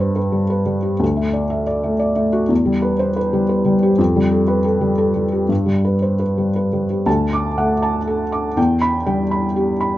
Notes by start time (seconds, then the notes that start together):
Already playing: G2 G3 B4
0.00 C5
0.16 B4
0.32 G3
0.50 B4
0.66 G3
0.83 G4
1.00 D2
1.17 A3
1.33 D5
1.50 E5
1.67 D5
1.84 A3
1.99 D5
2.16 A3
2.33 F#4
2.49 E2
2.66 G3
2.82 B4
2.99 C5
3.16 B4
3.33 G3
3.49 B4
3.65 G3
3.83 G4
3.98 F2
4.16 G3
4.31 A4
4.48 B4
4.64 A4
4.81 G3
4.98 A4
5.15 G3
5.32 G4
5.49 G2
5.66 G3
5.85 B4
6.02 C5
6.20 B4
6.38 G3
6.56 B4
6.73 G3
6.90 G4
7.06 D2 A5
7.33 D6
7.58 A3 F#5
7.82 A5
8.07 A4
8.32 D6
8.57 E2 G5
8.81 B5
9.06 G3 G5
9.31 B5
9.56 G4
9.81 B5